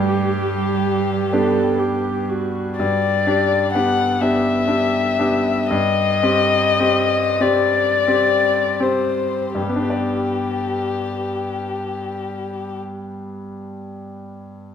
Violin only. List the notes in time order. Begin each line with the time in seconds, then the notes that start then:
Already playing: G4
2.77 D5
3.73 F#5
4.20 E5
5.70 D#5
7.41 D5
8.82 C5
9.55 G4